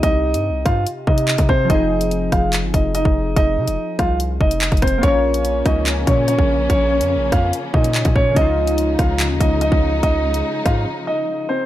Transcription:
<<
  \new Staff \with { instrumentName = "Grand piano" } { \time 4/4 \key bes \dorian \tempo 4 = 144 <ees' ees''>4. <f' f''>8 r8 <ees' ees''>4 <c' c''>8 | <ees' ees''>4. <f' f''>8 r8 <ees' ees''>8 <ees' ees''>4 | <ees' ees''>4. <f' f''>8 r8 <ees' ees''>4 <c' c''>8 | <des' des''>4. <ees' ees''>8 r8 <des' des''>8 <des' des''>4 |
<des' des''>4. <f' f''>8 r8 <ees' ees''>4 <des' des''>8 | <ees' ees''>4. <f' f''>8 r8 <ees' ees''>8 <ees' ees''>4 | <ees' ees''>4. <f' f''>8 r8 <ees' ees''>4 <c' c''>8 | }
  \new Staff \with { instrumentName = "Synth keys" } { \time 4/4 \key bes \dorian <c c' ees' g'>1 | <f c' ees' aes'>1~ | <f c' ees' aes'>1 | <bes f' bes' des''>1~ |
<bes f' bes' des''>1 | <des des' ees' f'>1~ | <des des' ees' f'>1 | }
  \new Staff \with { instrumentName = "String section" } { \clef bass \time 4/4 \key bes \dorian << { r1 | r1 | r1 | <des bes des'>1~ |
<des bes des'>1 | <des aes ees'>1~ | <des aes ees'>1 | } \\ { r1 | r1 | r1 | f1~ |
f1~ | f1~ | f1 | } >> }
  \new Staff \with { instrumentName = "808-style bass" } { \clef bass \time 4/4 \key bes \dorian c,8. g,16. c,16. g,8 r8 c8. c8. | f,,4. f,,8. g,,16 f,,8. f,,8. | f,,8 c16 f,,16 r8 c,4 f,,8. f,,8. | bes,,4. des,4 bes,8. bes,,8. |
bes,,8. f,16. bes,,16. f,8 r8 bes,8. bes,8. | des,4. des,8. ees,16 des,8. des,8. | des,4 r8 aes,8 r2 | }
  \new DrumStaff \with { instrumentName = "Drums" } \drummode { \time 4/4 <hh bd>8. hh16 r8 <hh bd ss>8 hh8 bd16 hh16 hc16 <hh bd>16 bd8 | <hh bd>8. hh16 hh8 <hh bd ss>8 <hc hh>8 <hh bd>8 hh16 bd8. | <hh bd>8. hh16 r8 <hh bd ss>8 hh8 bd16 hh16 hc16 <hh bd>32 hh32 <hh bd ss>32 hh16. | <hh bd>8. hh16 hh8 <hh bd ss>8 <hc hh>8 <hh bd>8 hh16 bd8. |
<hh bd>8. hh16 r8 <hh bd ss>8 hh8 bd16 hh16 hc16 <hh bd>16 bd8 | <hh bd>8. hh16 hh8 <hh bd ss>8 <hc hh>8 <hh bd>8 hh16 bd8. | <hh bd>8. hh16 r8 <hh bd ss>8 r4 r4 | }
>>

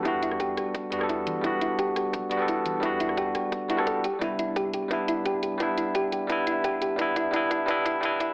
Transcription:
<<
  \new Staff \with { instrumentName = "Synth arpeggio sound" } { \time 4/4 \key e \minor \tempo 4 = 173 e'8 e'8 g'8 g'8 r4 e'8 e8 | e'8 e'8 g'8 g'8 r4 e'8 e8 | e'8 e'8 g'8 g'8 r8 e'8 a'8 g'8 | e'8 e'8 g'8 g'8 e'8 e'8 g'8 g'8 |
e'8 e'8 g'8 g'8 e'8 e'8 g'8 g'8 | e'8 e'8 e'8 e'8 e'8 e'8 e'8 e'8 | }
  \new Staff \with { instrumentName = "Tine electric piano" } { \time 4/4 \key e \minor <g b d' fis'>2~ <g b d' fis'>8 <g b d' fis'>16 <g b d' a'>4~ <g b d' a'>16 | <g b d' fis'>2~ <g b d' fis'>8 <g b d' fis'>16 <g b d' a'>4~ <g b d' a'>16 | <g b d' fis'>2~ <g b d' fis'>8 <g b d' fis'>16 <g b d' a'>8. r8 | <g b d' e'>2 <g b d' e'>2 |
<g b d' e'>2 <g b d' e'>2 | <g b d' e'>4 <g b d' e'>4 <g b d' e'>4 <g b d' e'>4 | }
  \new Staff \with { instrumentName = "Sub bass" } { \clef bass \time 4/4 \key e \minor e,,16 e,4~ e,16 e,,16 r8. e,4 g,,8 | e,,4. e,,16 r16 b,,16 r16 e,,4.~ | e,,16 e,4~ e,16 e,,16 r8. e,,4 r8 | c,4. c,16 r16 g,,16 r16 c,4.~ |
c,16 g,,4~ g,,16 c,16 r8. g,,4 e,8 | c,4. c,16 r16 g,,16 r16 c,4. | }
  \new DrumStaff \with { instrumentName = "Drums" } \drummode { \time 4/4 <hh bd>8 hh16 ss16 <hh bd>8 <hh ss>8 <hh bd>8 hh16 ss16 <hh bd>8 hh8 | <hh bd>8 hh8 <hh bd>8 <hh ss>8 <hh bd>8 hh8 <hh bd>8 hh8 | <hh bd>8 hh16 ss16 <hh bd>8 <hh ss>8 <hh bd>8 hh16 ss16 <hh bd>8 hh8 | <hh bd>8 hh8 <hh bd>8 hh8 <hh bd>8 hh8 <hh bd>8 hh8 |
<hh bd>8 hh8 <hh bd>8 hh8 <hh bd>8 hh8 <hh bd>8 hh8 | <hh bd>8 <hh bd>8 <hh bd>8 <hh bd>8 <hh bd>8 <hh bd>8 <hh bd>8 <hh bd>8 | }
>>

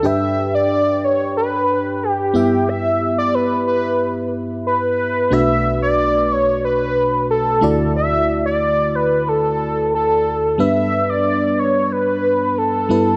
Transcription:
<<
  \new Staff \with { instrumentName = "Analog synth lead" } { \time 4/4 \key g \lydian \tempo 4 = 91 e''8. d''8. cis''8 b'4 g'4 | e''8. d''16 b'8 b'4 r8 b'4 | e''8. d''8. cis''8 b'4 a'4 | e''8. d''8. b'8 a'4 a'4 |
e''8. d''8. cis''8 b'4 a'4 | }
  \new Staff \with { instrumentName = "FM electric piano" } { \time 4/4 \key g \lydian <g, d' g' b' g''>2.~ <g, d' g' b' g''>8 <g, b e' g' e''>8~ | <g, b e' g' e''>2.~ <g, b e' g' e''>8 r8 | <b,, b, a d' fis' b'>2.~ <b,, b, a d' fis' b'>8 <d, d a e' fis' d''>8~ | <d, d a e' fis' d''>2.~ <d, d a e' fis' d''>8 r8 |
<g, g b d' b'>2.~ <g, g b d' b'>8 <g, g b e' b'>8 | }
>>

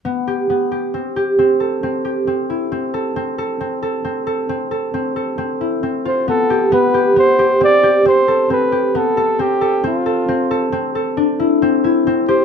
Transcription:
<<
  \new Staff \with { instrumentName = "Flugelhorn" } { \time 7/4 \key a \minor \tempo 4 = 135 r1. r4 | r1. r8 c''8 | a'4 b'4 c''4 d''4 c''4 b'4 a'4 | g'4 f'2 r2. r8 c''8 | }
  \new Staff \with { instrumentName = "Harp" } { \time 7/4 \key a \minor b8 g'8 b8 g'8 c'8 g'8 c'8 a'8 c'8 g'8 c'8 e'8 c'8 a'8 | c'8 a'8 c'8 a'8 c'8 a'8 c'8 a'8 c'8 a'8 c'8 e'8 c'8 f'8 | b8 g'8 b8 g'8 b8 g'8 c'8 g'8 c'8 a'8 c'8 g'8 b8 a'8 | c'8 a'8 c'8 a'8 c'8 a'8 c'8 a'8 d'8 e'8 c'8 e'8 c'8 g'8 | }
>>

